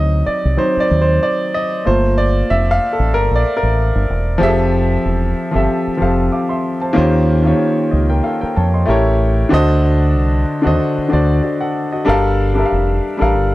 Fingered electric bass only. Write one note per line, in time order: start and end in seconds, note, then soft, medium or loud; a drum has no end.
0.00 0.22 D2 medium
0.27 muted fingered electric bass stroke soft
0.45 0.56 C2 medium
0.77 muted fingered electric bass stroke soft
0.91 1.18 D#2 medium
1.87 2.42 G1 medium
2.51 2.77 F1 medium
2.99 3.14 A1 medium
3.14 3.28 G1 medium
3.31 3.43 A#1 medium
3.63 3.90 A1 medium
3.96 4.07 G1 medium
4.10 4.37 E1 medium
4.41 4.96 F1 medium
5.05 5.33 E1 medium
5.55 5.67 G1 medium
5.88 muted fingered electric bass stroke soft
6.01 6.28 F1 medium
6.97 7.52 D#2 medium
7.93 8.20 C#2 medium
8.43 muted fingered electric bass stroke soft
8.57 8.84 F2 medium
8.88 9.43 A1 loud
9.53 10.17 D2 medium
10.17 10.44 C2 medium
10.66 10.78 D#2 medium
10.98 muted fingered electric bass stroke soft
11.13 11.40 D2 medium
12.08 12.63 G1 loud
12.72 12.99 F1 medium
13.22 13.36 A1 medium
13.36 13.55 G1 medium